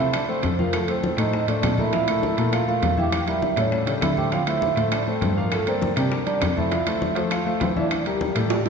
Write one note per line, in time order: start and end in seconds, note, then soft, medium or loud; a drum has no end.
0.00 0.40 C3 medium
0.00 0.23 A3 medium
0.00 0.11 E4 medium
0.00 0.23 A4 medium
0.00 0.23 C5 medium
0.00 0.11 E5 medium
0.13 0.28 D4 medium
0.13 0.30 D5 medium
0.13 high bongo medium
0.13 high conga soft
0.13 high timbale loud
0.13 claves medium
0.28 0.53 A3 medium
0.28 0.56 C4 medium
0.28 0.53 A4 medium
0.28 0.53 C5 medium
0.28 0.60 C5 medium
0.28 high bongo soft
0.28 high conga soft
0.43 1.13 F2 medium
0.43 high bongo soft
0.43 low bongo medium
0.43 high conga medium
0.43 high timbale medium
0.59 0.83 F3 medium
0.59 0.72 A#3 medium
0.59 0.83 F4 medium
0.59 0.73 A#4 medium
0.59 0.83 F5 medium
0.59 high conga medium
0.73 0.88 A3 medium
0.73 0.89 A4 loud
0.73 high bongo medium
0.73 high conga soft
0.73 high timbale medium
0.73 claves medium
0.88 1.13 A3 medium
0.88 1.16 C4 medium
0.88 1.13 A4 medium
0.88 1.13 C5 medium
0.88 1.20 C5 medium
0.88 high bongo soft
0.88 high conga soft
0.88 high timbale medium
1.04 high bongo medium
1.04 high conga medium
1.17 1.46 A2 medium
1.17 1.43 A3 medium
1.17 1.46 D#4 medium
1.17 1.43 A4 medium
1.17 1.43 C5 medium
1.17 1.50 D#5 medium
1.17 high bongo soft
1.17 high conga soft
1.17 high timbale medium
1.17 claves medium
1.33 high bongo medium
1.33 high conga soft
1.48 1.62 A2 medium
1.48 1.73 A3 medium
1.48 1.76 D4 medium
1.48 1.73 A4 medium
1.48 1.73 C5 medium
1.48 1.80 D5 loud
1.48 high bongo soft
1.48 high conga soft
1.48 high timbale medium
1.63 2.32 A#2 medium
1.63 high bongo soft
1.63 low bongo medium
1.63 high conga medium
1.63 high timbale medium
1.63 low timbale medium
1.63 claves medium
1.78 1.91 A3 medium
1.78 2.49 E4 loud
1.78 1.91 A4 medium
1.78 1.91 A#4 medium
1.78 2.49 E5 medium
1.78 high conga medium
1.93 2.05 F3 medium
1.93 2.06 F4 medium
1.93 2.06 F5 medium
1.93 high bongo medium
1.93 high conga soft
1.93 high timbale medium
2.08 2.33 A3 medium
2.08 2.33 A4 medium
2.08 2.33 A#4 medium
2.08 high bongo soft
2.08 high conga soft
2.08 high timbale medium
2.08 claves medium
2.23 high bongo medium
2.23 high conga medium
2.38 2.79 A#2 medium
2.38 2.62 A3 medium
2.38 2.63 A4 medium
2.38 2.63 A#4 medium
2.38 high bongo soft
2.38 high conga soft
2.38 high timbale medium
2.53 2.67 F4 medium
2.53 2.67 F5 medium
2.53 high bongo medium
2.53 high conga soft
2.53 high timbale medium
2.53 claves medium
2.68 2.92 A3 medium
2.68 2.96 F4 medium
2.68 2.92 A4 medium
2.68 2.92 A#4 medium
2.68 2.99 F5 loud
2.68 high bongo soft
2.68 high conga soft
2.82 3.52 E2 medium
2.82 high bongo soft
2.82 low bongo medium
2.82 high conga medium
2.82 high timbale medium
2.97 3.22 E3 medium
2.97 3.22 E4 medium
2.97 3.26 G4 medium
2.97 3.23 E5 medium
2.97 3.26 G5 loud
2.97 high conga medium
3.12 high bongo medium
3.12 high conga soft
3.12 high timbale loud
3.12 claves medium
3.27 3.52 G3 medium
3.27 3.55 E4 medium
3.27 3.52 G4 medium
3.27 3.53 A#4 medium
3.27 3.59 E5 loud
3.27 high bongo soft
3.27 high conga soft
3.27 high timbale medium
3.42 high bongo medium
3.42 high conga medium
3.57 3.85 A2 medium
3.57 3.82 G3 medium
3.57 3.85 C#4 medium
3.57 3.82 G4 medium
3.57 3.82 A4 medium
3.57 3.89 C#5 medium
3.57 high bongo soft
3.57 high conga soft
3.57 high timbale medium
3.57 claves medium
3.72 high bongo medium
3.72 high conga soft
3.87 4.01 C#3 medium
3.87 4.12 G3 medium
3.87 4.01 D4 medium
3.87 4.12 G4 medium
3.87 4.12 A4 medium
3.87 4.04 D5 medium
3.87 high bongo soft
3.87 high conga soft
3.87 high timbale medium
4.02 4.71 D3 medium
4.02 4.09 E4 medium
4.02 4.10 E5 medium
4.02 high bongo soft
4.02 low bongo medium
4.02 high conga medium
4.02 high timbale medium
4.02 low timbale medium
4.02 claves medium
4.17 4.29 A3 medium
4.17 4.31 G4 medium
4.17 4.29 A4 medium
4.17 4.30 C5 medium
4.17 4.32 G5 medium
4.17 high conga medium
4.32 4.44 F3 medium
4.32 4.45 F4 medium
4.32 4.46 F4 medium
4.32 4.45 F5 medium
4.32 4.48 F5 loud
4.32 high bongo medium
4.32 high conga soft
4.32 high timbale medium
4.47 4.72 A3 medium
4.47 4.89 E4 medium
4.47 4.72 A4 medium
4.47 4.72 C5 medium
4.47 4.94 E5 loud
4.47 high bongo soft
4.47 high conga soft
4.47 high timbale medium
4.47 claves medium
4.62 high bongo soft
4.62 high conga medium
4.77 5.19 A2 medium
4.77 5.02 A3 medium
4.77 5.02 A4 medium
4.77 5.02 C5 medium
4.77 high bongo soft
4.77 high conga soft
4.77 high timbale medium
4.92 5.06 D4 medium
4.92 5.07 D5 medium
4.92 high bongo medium
4.92 high conga soft
4.92 high timbale medium
4.92 claves medium
5.06 5.32 A3 medium
5.06 5.35 C4 medium
5.06 5.32 A4 medium
5.06 5.32 C5 medium
5.06 5.39 C5 medium
5.06 high bongo soft
5.06 high conga soft
5.21 5.91 G2 medium
5.21 high bongo soft
5.21 low bongo medium
5.21 high conga medium
5.21 high timbale medium
5.37 5.62 F3 medium
5.37 5.51 A#3 medium
5.37 5.62 F4 medium
5.37 5.53 A#4 medium
5.37 5.62 F5 medium
5.52 5.66 A3 medium
5.52 5.68 A4 medium
5.52 high bongo medium
5.52 high conga soft
5.52 high timbale medium
5.52 claves medium
5.67 5.92 A#3 medium
5.67 5.95 C4 medium
5.67 5.92 A#4 medium
5.67 5.98 C5 medium
5.67 5.92 D5 medium
5.67 high bongo soft
5.67 high conga soft
5.67 high timbale medium
5.82 high bongo medium
5.82 high conga medium
5.96 6.38 C3 loud
5.96 6.22 G3 medium
5.96 6.25 D4 medium
5.96 6.22 G4 medium
5.96 6.22 A#4 medium
5.96 6.26 D5 medium
5.96 high bongo soft
5.96 high conga soft
5.96 high timbale medium
5.96 claves medium
6.12 high bongo medium
6.12 high conga soft
6.26 6.51 G3 medium
6.26 6.54 D4 medium
6.26 6.51 G4 medium
6.26 6.51 A#4 medium
6.26 6.55 D5 loud
6.26 high bongo soft
6.26 high conga soft
6.26 high timbale medium
6.41 7.11 F2 medium
6.41 high bongo soft
6.41 low bongo medium
6.41 high conga medium
6.41 high timbale loud
6.41 low timbale medium
6.41 claves medium
6.56 6.69 A3 medium
6.56 7.12 E4 medium
6.56 6.69 A4 medium
6.56 6.69 C5 medium
6.56 7.13 E5 medium
6.56 high conga medium
6.71 6.84 F3 medium
6.71 6.84 F4 medium
6.71 6.84 F5 medium
6.71 high bongo medium
6.71 high conga soft
6.71 high timbale medium
6.87 7.11 A3 medium
6.87 7.11 A4 medium
6.87 7.11 C5 medium
6.87 high bongo soft
6.87 high conga soft
6.87 high timbale loud
6.87 claves medium
7.02 high bongo medium
7.02 high conga medium
7.16 7.58 F3 medium
7.16 7.41 A3 medium
7.16 7.41 A4 medium
7.16 7.41 C5 medium
7.16 high bongo soft
7.16 high conga soft
7.16 high timbale medium
7.31 7.45 F4 medium
7.31 7.46 F5 loud
7.31 high bongo medium
7.31 high conga soft
7.31 high timbale medium
7.31 claves medium
7.46 7.71 A3 medium
7.46 7.60 F4 medium
7.46 7.71 A4 medium
7.46 7.71 C5 medium
7.46 7.62 F5 medium
7.46 high bongo soft
7.46 high conga soft
7.61 8.30 E3 medium
7.61 7.68 C4 medium
7.61 7.68 C5 medium
7.61 high bongo soft
7.61 low bongo medium
7.61 high conga medium
7.61 high timbale medium
7.76 8.01 E3 medium
7.76 8.04 D4 medium
7.76 8.01 E4 medium
7.76 8.07 D5 medium
7.76 8.01 E5 medium
7.76 high conga medium
7.91 high bongo medium
7.91 high conga soft
7.91 high timbale medium
7.91 claves medium
8.06 8.30 G3 medium
8.06 8.62 G3 medium
8.06 8.31 G4 medium
8.06 8.62 G4 medium
8.06 8.31 A#4 medium
8.06 high bongo soft
8.06 high conga soft
8.06 high timbale medium
8.21 high bongo medium
8.21 high conga medium
8.35 8.69 A2 loud
8.35 8.60 G3 medium
8.35 8.60 G4 medium
8.35 8.60 A4 medium
8.35 high bongo soft
8.35 high conga soft
8.35 high timbale medium
8.35 claves medium
8.50 high bongo medium
8.50 high conga soft
8.50 high timbale medium
8.65 8.69 G3 medium
8.65 8.69 G4 medium
8.65 high bongo soft
8.65 high timbale medium